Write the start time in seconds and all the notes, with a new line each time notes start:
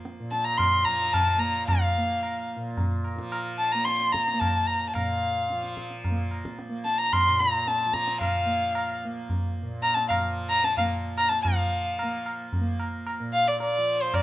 Already playing: A#2 F3 A#3
0.05 tabla te
0.20 A#2
0.31 A5, tabla te
0.44 A#5
0.57 C6, tabla na, tabla ge
0.79 F3
0.85 A#5, tabla ge
1.13 A5, tabla na, tabla ge
1.38 A#3 A#5
1.67 F5, tabla na, tabla ge
1.97 A#3
2.23 tabla na
2.56 A#2
2.77 tabla tin, tabla ge
3.04 tabla na
3.16 F3, tabla ke
3.32 tabla na
3.58 A5
3.72 A#3 A#5
3.85 C6, tabla te
4.01 tabla te
4.12 A#5, tabla ke
4.28 tabla te
4.33 A#3
4.39 A5, tabla na, tabla ge
4.67 A#5
4.89 A5
4.93 A#2 F5, tabla na, tabla ge
5.50 F3, tabla te
5.63 tabla te
5.77 tabla ke
5.90 tabla te
6.04 tabla tin, tabla ge
6.10 A#3
6.31 tabla na
6.45 tabla ke
6.59 tabla te
6.69 A#3
6.85 A5, tabla te
6.98 A#5
7.13 C6, tabla na, tabla ge
7.28 A#2
7.39 A#5, tabla te
7.67 A5, tabla te
7.80 tabla te
7.86 F3
7.93 A#5, tabla ke
8.08 tabla te
8.21 F5, tabla na, tabla ge
8.46 A#3
8.75 tabla na
9.05 A#3
9.30 tabla tin, tabla ge
9.62 A#2
9.83 A#5, tabla na
9.94 A5, tabla te
10.08 F5, tabla na, tabla ge
10.20 F3
10.49 A#5, tabla na
10.64 A5, tabla te
10.77 A#3 F5, tabla na, tabla ge
11.18 A#5, tabla na
11.29 A5, tabla te
11.42 F3 F5, tabla na, tabla ge
11.99 A#3, tabla na
12.26 tabla na
12.53 tabla tin, tabla ge
12.60 A#3
12.80 tabla na
13.07 tabla na
13.20 A#2
13.33 F5
13.47 D5
13.60 D5, tabla tin
13.78 F3
14.01 C5
14.14 D5, tabla na, tabla ge